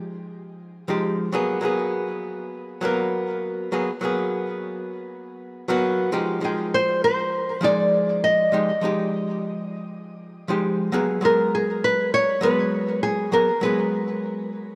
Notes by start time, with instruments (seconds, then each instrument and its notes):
Already playing: hollow-body jazz guitar F3 G#3 D#4 G4
0.88 hollow-body jazz guitar F3 G#3 D#4 G4
1.32 hollow-body jazz guitar F#3 A#3 B3 G#4
1.61 hollow-body jazz guitar F#3 A#3 B3 G#4
2.81 hollow-body jazz guitar F#3 A#3 B3 A#4
3.72 hollow-body jazz guitar F#3 A#3 B3 G#4
4.01 hollow-body jazz guitar F#3 A#3 B3 G#4
5.68 hollow-body jazz guitar F#3 A#3 B3 F#4
6.12 hollow-body jazz guitar F3 G#3 D#4 G4
6.41 hollow-body jazz guitar F3 G#3 D#4 G5, nylon-string guitar G#4
6.74 nylon-string guitar C5
7.04 nylon-string guitar C5
7.61 hollow-body jazz guitar F3 G#3 D#4 G#4, nylon-string guitar D5
8.24 nylon-string guitar D#5
8.52 hollow-body jazz guitar F3 G#3 D#4 G4
8.81 hollow-body jazz guitar F3 G#3 D#4 G4
10.48 hollow-body jazz guitar F3 G#3 D#4 G4
10.92 hollow-body jazz guitar F#3 A#3 B3 G#4
11.21 hollow-body jazz guitar F#3 G#3 B3, nylon-string guitar A#4
11.25 hollow-body jazz guitar G#4
11.55 nylon-string guitar G#4
11.84 nylon-string guitar B4
12.14 nylon-string guitar C#5
12.41 hollow-body jazz guitar F#3 G#3 B3 B4, nylon-string guitar B4
13.03 nylon-string guitar G#4
13.32 hollow-body jazz guitar F#3 A#3 B3 G#4, nylon-string guitar A#4
13.61 hollow-body jazz guitar F#3 G#3 B3 G#4, nylon-string guitar B4